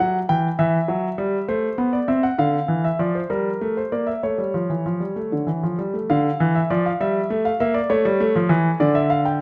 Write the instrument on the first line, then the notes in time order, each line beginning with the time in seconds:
grand piano
0.00 F#3 F#5
0.29 E3 G5
0.59 E3 E5
0.88 F#3
1.18 G3
1.48 A3 C5
1.78 B3
1.93 D5
2.08 C4 E5
2.23 F#5
2.38 D3 F5
2.68 E3
2.84 E5
2.99 F3 D5
3.15 C5
3.30 G3 A#4
3.61 A3
3.77 C5
3.92 A#3 D5
4.07 E5
4.23 A3 C#5
4.38 G3
4.54 F3
4.70 E3
4.86 F3
5.00 G3
5.16 A3
5.32 D3
5.47 E3
5.63 F3
5.79 G3
5.94 A3
6.10 D3 F5
6.40 E3
6.55 E5
6.70 F3 D5
6.86 F5
7.00 G3 E5
7.30 A3
7.45 F5
7.60 A#3 E5
7.74 D5
7.90 A3 C#5
8.05 G3
8.20 A3
8.36 F3
8.49 E3
8.80 D3 D5
8.95 E5
9.10 F5
9.25 G5